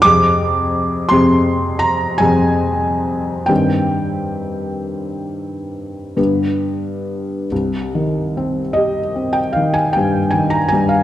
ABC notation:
X:1
M:9/8
L:1/16
Q:3/8=50
K:Cm
V:1 name="Felt piano"
d'6 c'4 b2 a6 | g12 z6 | z6 e3 g f a g2 a b a f |]
V:2 name="Felt piano" clef=bass
[F,,C,CA]6 [F,,C,CA]6 [F,,C,CA]6 | [G,,E,CG]12 [G,,D,=B,G]6 | C,,2 E,2 C2 G2 C2 E,2 G,,2 E,2 G,,2 |]